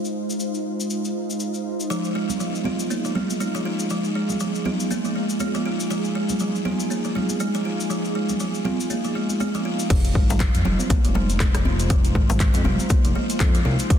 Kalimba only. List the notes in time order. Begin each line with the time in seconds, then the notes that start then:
1.90 F3
2.15 G#3
2.40 F3
2.65 F4
2.90 A#3
3.05 F3
3.15 G#3
3.40 G#3
3.55 F3
3.65 F4
3.91 F3
4.15 G#3
4.41 F3
4.66 F4
4.91 A#3
5.05 F3
5.16 G#3
5.40 G#3
5.55 F3
5.65 F4
5.91 F3
6.15 G#3
6.40 F3
6.65 F4
6.90 A#3
7.05 F3
7.15 G#3
7.40 G#3
7.55 F3
7.65 F4
7.90 F3
8.15 G#3
8.40 F3
8.65 F4
8.90 A#3
9.05 F3
9.15 G#3
9.40 G#3
9.55 F3
9.65 F4
9.90 F3
10.15 G#3
10.40 F3
10.65 F4
10.90 A#3
11.05 F3
11.15 G#3
11.40 G#3
11.55 F3
11.65 F4
11.90 F3
12.15 G#3
12.40 F3
12.65 F4
12.90 A#3
13.05 F3
13.15 G#3
13.40 G#3
13.55 F3
13.65 F4
13.90 F3